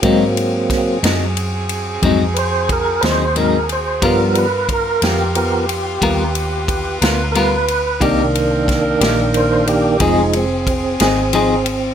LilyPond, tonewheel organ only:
<<
  \new Staff \with { instrumentName = "Tonewheel organ" } { \time 12/8 \key aes \lydian \tempo 4. = 60 r2. r8 <b' c''>8 bes'8 <b' c''>8 bes'8 c''8 | ais'8 <ais' b'>8 ais'8 g'2. r8 <ais' b'>4 | r2 c''8 g'8 r8 c'2~ c'8 | }
  \new Staff \with { instrumentName = "Tonewheel organ" } { \time 12/8 \key aes \lydian <ges bes c'>4. r1 r8 | <f g b>8 r4. <f b ais'>8 r2. r8 | <ees bes d'>2~ <ees bes d'>8 <ees bes d'>8 <f aes ees'>8 r2 r8 | }
>>